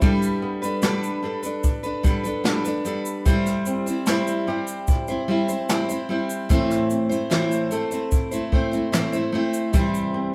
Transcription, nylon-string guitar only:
0.00 3.26 G3 medium
0.00 0.10 C4 medium
0.00 0.10 E4 medium
0.00 1.23 G4 medium
0.42 2.03 B3 medium
0.83 1.63 D4 medium
1.23 3.34 A4 medium
1.64 2.44 D4 medium
2.04 2.84 B3 medium
2.45 3.34 D4 medium
2.85 3.34 B3 medium
3.26 6.50 G3 medium
3.67 5.29 C4 medium
4.07 4.88 E4 medium
4.48 6.58 G4 medium
4.88 5.69 E4 medium
5.29 6.10 C4 medium
5.69 7.31 E4 medium
6.10 6.50 C4 medium
6.50 6.91 C4 medium
6.91 8.52 C4 medium
7.32 8.12 E4 medium
7.72 9.82 A4 medium
8.13 8.93 E4 medium
8.53 9.34 C4 medium
8.93 10.35 E4 medium
9.34 10.14 C4 medium
9.74 10.35 G3 medium
10.14 10.35 C4 medium

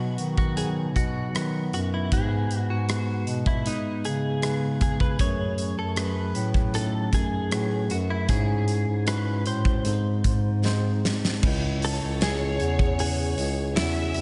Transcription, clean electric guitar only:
0.00 0.37 F#4 medium
0.38 0.57 F#4 medium
0.57 0.67 G#4 medium
0.96 1.73 F#4 medium
1.74 1.79 F#4 medium
1.94 2.13 E4 medium
2.13 2.59 G#4 medium
2.59 2.70 F#4 medium
2.70 3.43 F#4 medium
3.47 3.67 E4 medium
3.67 4.06 D#4 medium
4.05 4.78 G#4 medium
4.82 5.00 G#4 medium
5.01 5.20 B4 medium
5.21 5.78 C#5 loud
5.79 5.98 A4 medium
5.98 6.75 B4 medium
6.75 7.11 A4 medium
7.14 7.93 G#4 medium
7.91 7.96 F#4 medium
8.10 8.29 E4 medium
8.30 9.07 G#4 loud
9.08 9.47 B4 medium
9.47 11.00 C5 medium
11.85 12.20 A4 loud
12.23 12.99 G#4 medium
13.00 13.79 G#4 medium
13.76 14.21 E4 medium

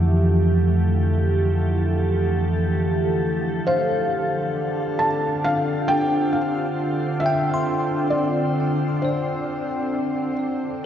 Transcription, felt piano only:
3.67 5.05 C5 medium
4.99 5.46 A5 medium
5.44 5.91 F5 medium
5.88 6.35 G5 medium
6.33 7.26 F5 medium
7.20 8.15 E5 medium
8.10 9.05 D5 medium
9.02 10.33 C5 medium

